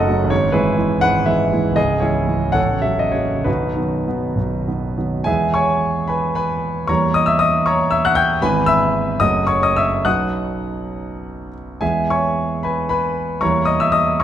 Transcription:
Already playing: F#1 F#2 F#3 A3 D#4 F#4 A4 D#5 F#5
0.08 F#3 A3 D#4
0.24 G#1
0.30 G#2 C#5
0.52 E3 G#3 E4 G#4 B4
0.77 E3 G#3 E4
1.01 G#1 G#2 B4 F#5
1.26 E3 G#3 E4 G#4 B4 E5
1.53 E3 G#3 E4
1.72 C#1
1.76 C#2 G#4 D#5
2.00 E3 G#3 C#4 E4 G#4 C#5
2.27 E3 G#3 C#4
2.52 A0 A1 A4 C#5 F#5
2.82 C#3 F#3 C#4 E5
2.99 D#5
3.12 C#3 F#3 C#4 C#5
3.44 B0 B1 D#4 F#4 B4
3.75 D#3 F#3 B3
4.07 D#3 F#3 B3
4.36 B0 B1
4.67 D#3 F#3 B3
4.98 D#3 F#3 B3
5.24 E2 E3 G#3 B3 G#4 E5 G#5
5.54 C#5 G#5 C#6
6.08 B4 G#5 B5
6.35 B4 G#5 B5
6.87 E2 E3 G3 A#3 C#5 A#5 C#6
7.14 D#5 D#6
7.26 E5 E6
7.39 D#5 D#6
7.66 C#5 A#5 C#6
7.91 E5 E6
8.05 F#5 F#6
8.15 G5 G6
8.42 G#1 E3 G#3 B3 B4 G#5 B5
8.66 E5 B5 E6
9.20 F#1 F#3 A3 F#4 D#5 D#6
9.47 C#5 C#6
9.63 D#5 D#6
9.76 E5 E6
10.05 B1 F#3 B3 D#4 F#5 D#6 F#6
11.81 E2 G#3 B3 E4 G#4 E5 G#5
12.10 C#5 G#5 C#6
12.63 B4 G#5 B5
12.89 B4 G#5 B5
13.41 E2 G3 A#3 E4 C#5 A#5 C#6
13.65 D#5 D#6
13.80 E5 E6
13.92 D#5 D#6
14.20 A#5 C#6

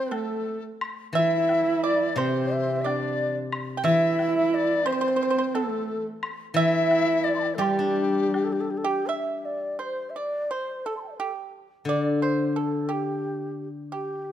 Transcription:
Already playing: C4 C5
0.11 A3 A4, low woodblock
0.81 high woodblock
1.13 E3 E4 E5
1.49 low woodblock
1.84 D5
2.16 C3 C4 C5, high woodblock
2.53 E5
2.81 D4 D5 E5
2.86 D5, low woodblock
3.53 high woodblock
3.77 G5
3.84 E3 E4 E5
4.19 low woodblock
4.37 E5
4.54 D5
4.86 C4 C5, high woodblock
4.92 C5
5.01 C5
5.08 C5
5.16 C5
5.23 C5
5.30 C5
5.38 C5
5.54 A3 A4, low woodblock
6.23 high woodblock
6.54 E3 E4 E5
6.91 low woodblock
7.24 D5
7.35 C6
7.40 G5 A5
7.47 D5 E5
7.54 A4 C5
7.58 G3 G4, high woodblock
7.79 D4
8.34 G4, low woodblock
8.44 A4
8.52 G4
8.60 A4
8.70 G4
8.77 A4
8.84 G4
9.09 E5
9.38 E5
9.45 D5
9.79 C5
10.10 E5
10.16 D5
10.51 C5
10.86 A4
10.97 A5 C6
11.03 G5
11.08 D5 E5
11.16 A4 C5
11.20 G4
11.85 D3 D5
12.22 C5
12.53 A4 C5
12.58 A4
12.89 G4
13.92 G4

